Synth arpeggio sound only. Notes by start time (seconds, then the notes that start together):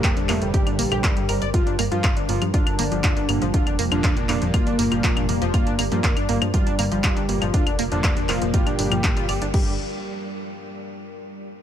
0.04 G5
0.17 D4
0.29 A#3
0.42 G3
0.54 G4
0.67 D4
0.79 A#3
0.92 G4
1.04 A#3
1.17 G3
1.29 A#4
1.42 D5
1.54 F4
1.67 D4
1.79 A#3
1.92 F3
2.04 F5
2.17 D4
2.29 A#3
2.42 F3
2.54 F4
2.67 D4
2.79 A#3
2.92 F3
3.04 F4
3.17 D4
3.29 A#3
3.42 F3
3.54 F4
3.67 D4
3.79 A#3
3.92 F3
4.04 F5
4.17 D4
4.29 A#3
4.42 F3
4.54 F4
4.67 D4
4.79 A#3
4.92 F3
5.04 F4
5.17 D4
5.29 A#3
5.42 F3
5.54 F4
5.67 D4
5.79 A#3
5.92 F3
6.04 F5
6.17 D4
6.29 A#3
6.42 F3
6.54 F4
6.67 D4
6.79 A#3
6.92 F3
7.04 F4
7.17 D4
7.29 A#3
7.42 F3
7.54 F4
7.67 D4
7.79 A#3
7.92 F3
8.04 F5
8.17 D4
8.29 A#3
8.42 F3
8.54 F4
8.67 D4
8.79 D4
8.92 F3
9.04 D4
9.17 F4
9.29 D5
9.42 D4
9.54 G3